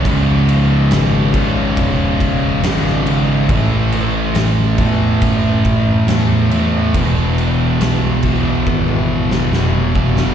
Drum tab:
CC |x-x-x-x-x-x-x-x-|x-x-x-x-x-x-x-x-|x-x-x-x---------|
SD |----o-------oo--|----o-------o---|----o------oo--o|
T1 |----------------|----------------|---------o------|
BD |o-----o-o-o-----|o-----o-o-o-----|o-----o-o-----o-|